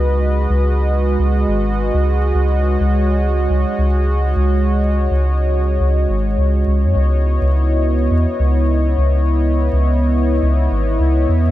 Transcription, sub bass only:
X:1
M:4/4
L:1/16
Q:"Swing 16ths" 1/4=104
K:C#m
V:1 name="Sub bass" clef=bass
C,,3 C,,4- C,, C,,2 G,,,3 C,,3 | C,,3 C,,4- C,, C,, z C,,4 C,,2- | C,,3 C,,4- C,, C,,2 G,,,2 C,,2 C,, F,, | C,,3 C,,4- C,, E,, z C,,4 C,,2- |
C,,3 C,,4- C,, C,,2 G,,,2 C,,2 E,, F,, |]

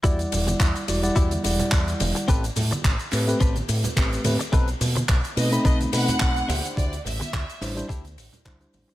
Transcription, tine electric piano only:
X:1
M:4/4
L:1/16
Q:"Swing 16ths" 1/4=107
K:Em
V:1 name="Tine electric piano"
[G,Edf]6 [G,EFd] [G,Edf]3 [G,Edf]6 | z6 [A,CGB] [A,CGB] z4 [A,CGB]2 [A,CGB] z | z6 [A,C^DB] [A,CDb]3 [A,CDb]4 z2 | z6 [G,DEc] [G,DEc] z4 [G,DEc] [G,DEc]3 |]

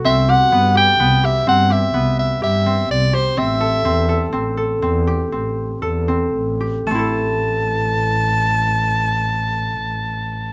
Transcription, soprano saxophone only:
X:1
M:7/4
L:1/8
Q:1/4=121
K:Ador
V:1 name="Soprano saxophone"
e f2 g2 e f e2 e e2 d c | e4 z8 z2 | a12- a2 |]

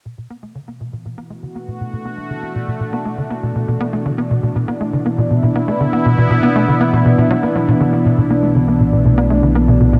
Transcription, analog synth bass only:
X:1
M:4/4
L:1/16
Q:1/4=120
K:Bphr
V:1 name="Analog synth bass" clef=bass
B,, B,, B, A, D, B, B,, B,, B,, B, A, D, B, B,, B,, B,, | B, A, D, B, B,, B,, B,, B, A, D, B, B,, B,, B,, B, A, | D, B, B,, B,, B,, B, A, D, B, B,, B,, B,, B, A, D, B, | B,, B,, B,, B, A, D, B, B,, B,, B,, F, B, F, B,, D, B, |
B,, B,, B, A, D, B, B,, B,, B,, B, A, D, B, B,, B,, B,, |]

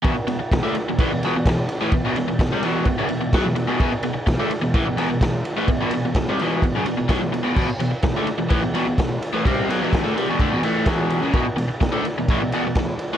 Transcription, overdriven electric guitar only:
X:1
M:4/4
L:1/16
Q:1/4=127
K:Em
V:1 name="Overdriven electric guitar" clef=bass
[E,,B,,] z [E,,B,,] z [E,,B,,] [D,A,] z [E,,B,,] [A,,E,] [E,,B,,] [E,,B,,] [E,,B,,] [E,,B,,]2 z [A,,E,] | [E,,B,,] [E,,B,,] [E,,B,,] [E,,B,,] [E,,B,,] [C,G,] [E,,B,,E,]2 [E,,B,,] [F,,^C,] [E,,B,,] [E,,B,,] [B,,F,] [E,,B,,] [E,,B,,] [E,,B,,] | [E,,B,,] z [E,,B,,] z [E,,B,,] [D,A,] z [E,,B,,] [A,,E,] [E,,B,,] [E,,B,,] [E,,B,,] [E,,B,,]2 z [A,,E,] | [E,,B,,] [E,,B,,] [E,,B,,] [E,,B,,] [E,,B,,] [C,G,] [E,,B,,E,]2 [E,,B,,] [F,,^C,] [E,,B,,] [E,,B,,] [B,,F,] [E,,B,,] [E,,B,,] [E,,B,,] |
[E,,B,,] z [E,,B,,] z [E,,B,,] [D,A,] z [E,,B,,] [A,,E,] [E,,B,,] [E,,B,,] [E,,B,,] [E,,B,,]2 z [A,,E,] | [C,G,C]2 [B,,F,] [E,,B,,E,]2 [D,A,] [C,G,] [E,,B,,] [D,A,] [E,,B,,] [A,,E,A,]2 [E,,B,,E,]3 [F,,^C,] | [E,,B,,] z [E,,B,,] z [E,,B,,] [D,A,] z [E,,B,,] [A,,E,] [E,,B,,] [E,,B,,] [E,,B,,] [E,,B,,]2 z [A,,E,] |]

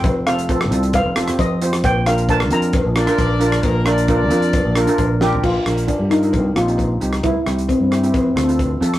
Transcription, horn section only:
X:1
M:4/4
L:1/8
Q:1/4=133
K:Bb
V:1 name="Horn section"
z8 | z4 z [Dd]3 | [B,B] [Dd] [Dd]4 z2 | z8 |
z8 |]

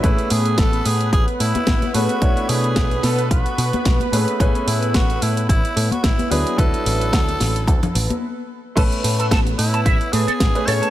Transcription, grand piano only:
X:1
M:4/4
L:1/16
Q:"Swing 16ths" 1/4=110
K:A
V:1 name="Grand piano"
[A,CGB]12- [A,CGB]2 [A,CGB]2 | [A,DEc]12- [A,DEc]2 [A,CGB]2 | [A,CGB]12- [A,CGB]2 [F,DEB]2 | [F,DEB]12 z4 |
[A,CB]12- [A,CB] [A,CGB] [A,CGc]2 |]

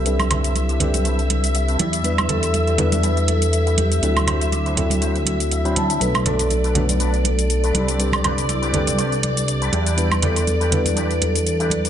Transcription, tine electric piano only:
X:1
M:4/4
L:1/16
Q:"Swing 16ths" 1/4=121
K:Em
V:1 name="Tine electric piano"
[G,CDAB]6 [G,CDAB]8 z2 | [G,B,DEB]6 [G,B,DEB]8- [G,B,DEB]2 | [F,CDEA]6 [F,CDEA]6- [F,CDEA] [F,CDEb]3 | [F,A,B,DA]6 [F,A,B,DA]8 z2 |
[G,CDAB]6 [G,CDAB]8 z2 | [G,B,DEB]6 [G,B,DEB]8- [G,B,DEB]2 |]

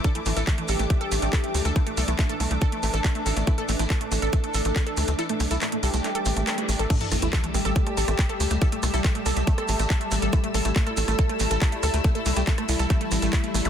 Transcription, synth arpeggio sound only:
X:1
M:4/4
L:1/16
Q:1/4=140
K:Cmix
V:1 name="Synth arpeggio sound"
A A, A, A A, A, A A, A, A A, A, A A, A, A | A, A, A A, A, A A, A, A A, A, A A, A, A A, | A, A A, A, A A, A, A A, A, A A, A, A A, A, | A A, A, A A, A, A A, A, A A, A, A A, A, A |
A, A A, A, A A, A, A A, A, A A, A, A A, A, | A A, A, A A, A, A A, A, A A, A, A A, A, A | A, A, A A, A, A A, A, A A, A, A A, A, A A, | A, A A, A, A A, A, A A, A, z A, A, A, A, A, |]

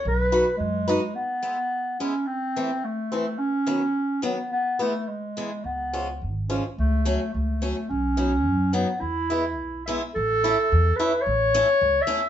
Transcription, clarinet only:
X:1
M:2/4
L:1/8
Q:1/4=107
K:B
V:1 name="Clarinet"
B2 G,2 | [K:E] B,3 C | =C2 A,2 | C3 B, |
B, A, G,2 | B,2 z C | A,2 A,2 | C3 B, |
E3 e | [K:A] A3 B | c3 e |]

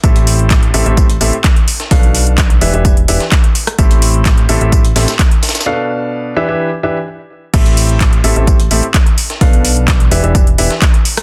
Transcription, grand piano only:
X:1
M:4/4
L:1/16
Q:1/4=128
K:Am
V:1 name="Grand piano"
[A,,CGAe]6 [A,,CGAe] [A,,CGAe]2 z [A,,CGAe] z4 z | [B,,DABf]6 [E,DGBe] [E,DGBe]2 z [E,DGBe] z4 z | [A,,CGAe]6 [A,,CGAe] [A,,CGAe]2 z [A,,CGAe] z4 z | [B,,DABf]6 [E,DGBe] [E,DGBe]2 z [E,DGBe] z4 z |
[A,,CGAe]6 [A,,CGAe] [A,,CGAe]2 z [A,,CGAe] z4 z | [B,,DABf]6 [E,DGBe] [E,DGBe]2 z [E,DGBe] z4 z |]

